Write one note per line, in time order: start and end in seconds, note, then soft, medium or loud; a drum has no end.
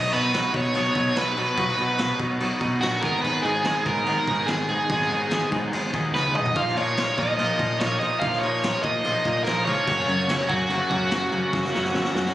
0.00 0.12 B2 medium
0.00 0.12 F#3 medium
0.00 0.13 B3 loud
0.00 0.13 D#4 loud
0.00 0.14 F#4 loud
0.00 0.13 D#5 loud
0.12 0.32 B2 medium
0.12 0.30 B2 medium
0.12 0.32 F#3 medium
0.12 0.33 B3 medium
0.12 0.34 D#4 medium
0.12 0.34 F#4 medium
0.12 0.51 B4 medium
0.12 crash medium
0.32 0.42 B1 loud
0.32 0.52 B2 medium
0.32 0.54 F#3 medium
0.32 0.54 B3 medium
0.32 0.54 D#4 medium
0.32 0.55 F#4 medium
0.32 snare loud
0.32 crash medium
0.53 0.73 B2 medium
0.53 0.71 B2 loud
0.53 0.74 F#3 medium
0.53 0.75 B3 medium
0.53 0.76 D#4 medium
0.53 0.77 F#4 medium
0.53 1.17 C#5 loud
0.53 kick medium
0.53 crash medium
0.74 0.84 B1 loud
0.74 0.93 B2 loud
0.74 0.95 F#3 loud
0.74 0.96 B3 loud
0.74 0.96 D#4 loud
0.74 0.97 F#4 loud
0.74 crash medium
0.95 1.14 B2 medium
0.95 1.12 B2 medium
0.95 1.16 F#3 medium
0.95 1.17 B3 medium
0.95 1.17 D#4 medium
0.95 1.17 F#4 medium
0.95 kick medium
0.95 crash medium
1.15 1.33 B1 medium
1.15 1.35 B2 medium
1.15 1.36 F#3 medium
1.15 1.37 B3 medium
1.15 1.38 D#4 loud
1.15 1.39 F#4 medium
1.15 1.39 B4 medium
1.15 snare loud
1.15 crash medium
1.36 1.57 B2 medium
1.36 1.46 B2 medium
1.36 1.58 F#3 medium
1.36 1.59 B3 medium
1.36 1.59 D#4 medium
1.36 1.60 F#4 medium
1.36 2.17 B4 medium
1.36 crash medium
1.57 1.74 B1 loud
1.57 1.78 B2 loud
1.57 1.80 F#3 loud
1.57 1.80 B3 loud
1.57 1.81 D#4 loud
1.57 1.81 F#4 loud
1.57 kick loud
1.57 crash medium
1.68 snare soft
1.78 1.95 B2 medium
1.78 1.98 B2 medium
1.78 2.00 F#3 medium
1.78 2.00 B3 medium
1.78 2.01 D#4 medium
1.78 2.02 F#4 loud
1.78 crash medium
1.98 2.08 B1 loud
1.98 2.19 B2 medium
1.98 2.21 F#3 medium
1.98 2.21 B3 medium
1.98 2.21 D#4 medium
1.98 2.22 F#4 medium
1.98 snare loud
1.98 crash medium
2.19 2.36 B2 loud
2.19 2.39 B2 medium
2.19 2.41 F#3 medium
2.19 2.42 B3 loud
2.19 2.42 D#4 medium
2.19 2.42 F#4 medium
2.19 kick medium
2.19 crash medium
2.40 2.49 B1 loud
2.40 2.60 B2 medium
2.40 2.62 F#3 loud
2.40 2.62 B3 loud
2.40 2.63 D#4 loud
2.40 2.63 F#4 loud
2.40 crash loud
2.61 2.78 B2 loud
2.61 2.81 B2 medium
2.61 2.83 F#3 medium
2.61 2.84 B3 medium
2.61 2.84 D#4 medium
2.61 2.84 F#4 medium
2.61 kick medium
2.61 crash medium
2.81 2.99 A#1 loud
2.81 3.02 B2 medium
2.81 3.03 F#3 loud
2.81 3.04 B3 medium
2.81 3.05 D#4 medium
2.81 3.03 F#4 medium
2.81 3.05 F#4 medium
2.81 snare loud
2.81 crash medium
3.02 3.11 G#1 medium
3.02 3.23 G#2 medium
3.02 3.23 D#3 loud
3.02 3.21 F#3 medium
3.02 3.24 G#3 loud
3.02 3.25 B3 loud
3.02 3.25 D#4 loud
3.02 3.26 G#4 loud
3.02 3.21 A#4 loud
3.02 kick loud
3.02 crash medium
3.22 3.40 G#1 loud
3.22 3.44 G#2 loud
3.22 3.44 D#3 loud
3.22 3.42 F#3 loud
3.22 3.45 G#3 loud
3.22 3.46 B3 loud
3.22 3.46 D#4 loud
3.22 3.44 B4 loud
3.22 crash medium
3.26 3.47 G#4 loud
3.42 3.65 G#2 medium
3.42 3.61 G#2 loud
3.42 3.64 D#3 medium
3.42 3.63 F#3 loud
3.42 3.66 G#3 medium
3.42 3.67 B3 medium
3.42 3.86 G#4 loud
3.42 crash medium
3.46 3.67 D#4 medium
3.46 3.68 G#4 medium
3.64 3.73 G#1 loud
3.64 3.86 G#2 medium
3.64 3.86 D#3 medium
3.64 3.84 F#3 medium
3.64 3.87 G#3 medium
3.64 3.88 B3 medium
3.64 snare loud
3.64 crash medium
3.68 3.88 D#4 medium
3.68 3.88 G#4 loud
3.84 4.02 G#2 loud
3.84 4.06 G#2 medium
3.84 4.06 D#3 medium
3.84 4.04 F#3 medium
3.84 4.07 G#3 medium
3.84 4.50 A#4 loud
3.84 kick loud
3.84 crash medium
3.88 4.07 B3 medium
3.88 4.09 D#4 medium
3.88 4.08 G#4 loud
4.05 4.14 G#1 loud
4.05 4.27 G#2 loud
4.05 4.27 D#3 loud
4.05 4.26 F#3 loud
4.05 4.27 G#3 loud
4.05 4.28 B3 loud
4.05 4.28 D#4 loud
4.05 crash medium
4.09 4.30 D#4 loud
4.09 4.29 G#4 loud
4.27 4.44 G#2 medium
4.27 4.47 G#2 medium
4.27 4.48 D#3 medium
4.27 4.47 F#3 medium
4.27 4.48 G#3 medium
4.27 4.49 B3 medium
4.27 4.50 D#4 medium
4.27 4.50 G#4 medium
4.27 kick loud
4.27 crash medium
4.46 4.65 G#1 medium
4.46 4.67 G#2 medium
4.46 4.68 D#3 medium
4.46 4.68 F#3 medium
4.46 4.69 G#3 medium
4.46 4.69 B3 medium
4.46 4.68 G#4 medium
4.46 snare loud
4.46 crash medium
4.51 4.71 D#4 medium
4.51 4.71 G#4 loud
4.69 4.88 G#2 medium
4.69 4.77 G#2 medium
4.69 4.89 D#3 medium
4.69 4.89 F#3 medium
4.69 4.90 G#3 medium
4.69 4.90 B3 medium
4.69 4.91 D#4 medium
4.69 5.48 G#4 loud
4.69 4.91 G#4 medium
4.69 crash medium
4.89 5.06 G#1 loud
4.89 5.08 G#2 medium
4.89 5.09 D#3 loud
4.89 5.10 F#3 loud
4.89 5.10 G#3 loud
4.89 5.10 B3 loud
4.89 5.11 D#4 loud
4.89 5.11 G#4 loud
4.89 kick loud
4.89 crash medium
5.01 snare soft
5.10 5.29 G#2 medium
5.10 5.27 G#2 medium
5.10 5.30 D#3 medium
5.10 5.30 F#3 medium
5.10 5.30 G#3 medium
5.10 5.31 B3 medium
5.10 5.32 D#4 medium
5.10 5.32 G#4 loud
5.10 crash medium
5.30 5.40 G#1 loud
5.30 5.49 G#2 medium
5.30 5.50 D#3 medium
5.30 5.52 F#3 medium
5.30 5.50 G#3 medium
5.30 5.51 B3 medium
5.30 5.53 D#4 loud
5.30 5.52 G#4 medium
5.30 snare loud
5.30 crash medium
5.50 5.69 G#2 medium
5.50 5.68 G#2 loud
5.50 5.70 D#3 medium
5.50 5.73 F#3 medium
5.50 5.71 G#3 medium
5.50 5.71 B3 medium
5.50 5.73 D#4 loud
5.50 5.73 G#4 medium
5.50 kick loud
5.50 crash medium
5.71 5.81 G#1 medium
5.71 5.90 G#2 loud
5.71 5.91 D#3 medium
5.71 5.94 F#3 medium
5.71 5.92 G#3 loud
5.71 5.92 B3 loud
5.71 5.94 D#4 loud
5.71 5.94 G#4 loud
5.71 crash loud
5.91 6.12 D#2 medium
5.91 6.12 G#2 medium
5.91 6.13 D#3 medium
5.91 6.14 F#3 medium
5.91 6.13 G#3 medium
5.91 6.14 B3 medium
5.91 6.15 D#4 medium
5.91 6.15 G#4 medium
5.91 kick medium
5.91 crash medium
6.13 6.33 C#2 medium
6.13 6.32 G#2 medium
6.13 6.33 D#3 medium
6.13 6.34 F#3 medium
6.13 6.34 G#3 medium
6.13 6.34 B3 medium
6.13 6.36 D#4 loud
6.13 6.36 G#4 loud
6.13 6.34 B4 medium
6.13 snare medium
6.34 6.54 B1 medium
6.34 6.54 G#2 medium
6.34 6.54 D#3 medium
6.34 6.55 F#3 medium
6.34 6.54 G#3 medium
6.34 6.55 B3 medium
6.34 6.56 D#4 loud
6.34 6.56 G#4 loud
6.34 6.56 D#5 loud
6.34 mid tom loud
6.46 floor tom medium
6.55 6.72 A#1 medium
6.55 6.74 A#2 loud
6.55 6.74 F3 loud
6.55 6.76 A#3 loud
6.55 6.76 D#4 loud
6.55 6.77 F4 loud
6.55 6.76 F5 loud
6.55 kick loud
6.55 crash medium
6.68 snare soft
6.75 6.96 A#2 medium
6.75 6.93 A#2 medium
6.75 6.97 F3 medium
6.75 6.97 A#3 medium
6.75 6.98 D#4 medium
6.75 6.98 F4 medium
6.75 7.19 C#5 loud
6.75 crash medium
6.96 7.06 A#1 loud
6.96 7.17 A#2 medium
6.96 7.18 F3 medium
6.96 7.19 A#3 medium
6.96 7.19 D#4 medium
6.96 7.20 F4 medium
6.96 snare loud
6.96 crash medium
7.18 7.38 A#2 medium
7.18 7.34 A#2 loud
7.18 7.38 F3 medium
7.18 7.40 A#3 medium
7.18 7.39 D#4 medium
7.18 7.40 F4 medium
7.18 7.79 D#5 medium
7.18 kick medium
7.18 crash medium
7.38 7.47 A#1 loud
7.38 7.58 A#2 loud
7.38 7.60 F3 loud
7.38 7.61 A#3 loud
7.38 7.60 D#4 loud
7.38 7.61 F4 loud
7.38 crash medium
7.59 7.76 A#2 medium
7.59 7.79 A#2 medium
7.59 7.81 F3 medium
7.59 7.82 A#3 medium
7.59 7.82 D#4 medium
7.59 7.82 F4 medium
7.59 kick medium
7.59 crash medium
7.80 7.97 A#1 loud
7.80 7.99 A#2 medium
7.80 8.01 F3 medium
7.80 8.02 A#3 medium
7.80 8.02 D#4 medium
7.80 8.02 F4 medium
7.80 7.99 C#5 loud
7.80 snare loud
7.80 crash medium
8.00 8.21 A#2 medium
8.00 8.10 A#2 medium
8.00 8.22 F3 loud
8.00 8.23 A#3 loud
8.00 8.23 D#4 loud
8.00 8.23 F4 medium
8.00 8.19 D#5 medium
8.00 crash medium
8.20 8.38 A#1 loud
8.20 8.42 A#2 medium
8.20 8.43 F3 medium
8.20 8.44 A#3 loud
8.20 8.39 F5 loud
8.20 kick loud
8.20 crash medium
8.24 8.44 D#4 loud
8.24 8.45 F4 loud
8.33 snare soft
8.39 8.82 C#5 loud
8.39 crash medium
8.43 8.59 A#2 medium
8.43 8.62 A#2 medium
8.43 8.63 F3 medium
8.43 8.64 A#3 medium
8.43 8.64 D#4 medium
8.43 8.64 F4 medium
8.63 8.72 A#1 loud
8.63 8.83 A#2 medium
8.63 8.84 F3 medium
8.63 8.85 A#3 medium
8.63 8.85 D#4 medium
8.63 8.85 F4 medium
8.63 snare loud
8.63 crash medium
8.83 9.00 A#2 loud
8.83 9.03 A#2 loud
8.83 9.04 F3 medium
8.83 9.05 A#3 medium
8.83 9.04 D#4 medium
8.83 9.06 F4 loud
8.83 9.42 D#5 loud
8.83 kick loud
8.83 crash medium
9.04 9.13 A#1 loud
9.04 9.24 A#2 medium
9.04 9.25 F3 loud
9.04 9.27 A#3 loud
9.04 9.26 D#4 loud
9.04 9.27 F4 loud
9.04 crash medium
9.25 9.42 A#2 medium
9.25 9.45 A#2 medium
9.25 9.46 F3 medium
9.25 9.47 A#3 medium
9.25 9.47 D#4 medium
9.25 9.48 F4 medium
9.25 kick medium
9.25 crash medium
9.44 9.62 A#1 medium
9.44 9.65 A#2 medium
9.44 9.66 F3 medium
9.44 9.67 A#3 medium
9.44 9.65 A#4 loud
9.44 snare loud
9.44 crash medium
9.48 9.67 D#4 medium
9.48 9.68 F4 loud
9.65 9.75 C#2 medium
9.65 9.86 A#2 medium
9.65 9.87 F3 medium
9.65 9.88 A#3 medium
9.65 9.87 D#4 loud
9.65 9.87 F4 loud
9.65 10.51 C#5 loud
9.65 crash medium
9.87 10.03 F#1 loud
9.87 10.07 F#2 medium
9.87 10.06 C#3 loud
9.87 10.08 F#3 loud
9.87 10.08 A#3 loud
9.87 10.09 C#4 loud
9.87 10.09 F#4 loud
9.87 kick loud
9.87 crash medium
10.07 10.28 F#2 medium
10.07 10.25 F#2 loud
10.07 10.28 C#3 medium
10.07 10.29 F#3 medium
10.07 10.30 A#3 medium
10.07 10.31 C#4 medium
10.07 10.31 F#4 medium
10.07 crash medium
10.28 10.37 F#1 loud
10.28 10.49 F#2 medium
10.28 10.49 C#3 medium
10.28 10.50 F#3 medium
10.28 10.50 A#3 loud
10.28 10.51 C#4 medium
10.28 10.52 F#4 medium
10.28 snare loud
10.28 crash medium
10.49 10.68 F#2 medium
10.49 10.66 F#2 loud
10.49 10.68 C#3 medium
10.49 10.70 F#3 medium
10.49 10.70 A#3 medium
10.49 10.71 C#4 medium
10.49 12.34 F#4 medium
10.49 10.72 F#4 loud
10.49 kick medium
10.49 crash medium
10.69 10.79 F#1 loud
10.69 10.89 F#2 loud
10.69 10.90 C#3 loud
10.69 10.91 F#3 loud
10.69 10.91 A#3 loud
10.69 10.93 C#4 loud
10.69 10.93 F#4 loud
10.69 crash medium
10.90 11.11 F#2 medium
10.90 11.07 F#2 loud
10.90 11.10 C#3 medium
10.90 11.12 F#3 medium
10.90 11.13 A#3 medium
10.90 11.13 C#4 medium
10.90 11.13 F#4 medium
10.90 kick medium
10.90 crash medium
11.11 11.28 F#1 medium
11.11 11.31 F#2 medium
11.11 11.31 C#3 medium
11.11 11.33 F#3 medium
11.11 11.32 A#3 medium
11.11 11.33 C#4 loud
11.11 11.34 F#4 medium
11.11 snare loud
11.11 crash medium
11.31 11.51 F#2 medium
11.31 11.40 F#2 medium
11.31 11.51 C#3 medium
11.31 11.52 F#3 medium
11.31 11.52 A#3 loud
11.31 11.53 C#4 loud
11.31 11.54 F#4 loud
11.31 crash medium
11.52 11.69 F#1 loud
11.52 11.71 F#2 loud
11.52 11.72 C#3 loud
11.52 11.73 F#3 loud
11.52 11.73 A#3 loud
11.52 11.74 C#4 loud
11.52 11.74 F#4 loud
11.52 kick loud
11.52 snare medium
11.64 snare medium
11.73 11.91 F#2 medium
11.73 11.93 C#3 medium
11.73 11.93 F#3 medium
11.73 11.94 A#3 medium
11.73 11.94 C#4 medium
11.73 11.95 F#4 medium
11.73 snare medium
11.85 snare medium
11.93 12.03 F#1 loud
11.93 12.13 F#2 medium
11.93 12.13 C#3 medium
11.93 12.14 F#3 medium
11.93 12.14 A#3 medium
11.93 12.15 C#4 medium
11.93 12.15 F#4 medium
11.93 snare medium
12.04 snare medium
12.14 12.33 F#2 medium
12.14 12.32 F#2 loud
12.14 12.33 C#3 medium
12.14 12.34 F#3 medium
12.14 12.34 A#3 medium
12.14 12.34 C#4 medium
12.14 12.34 F#4 medium
12.14 snare medium
12.26 snare medium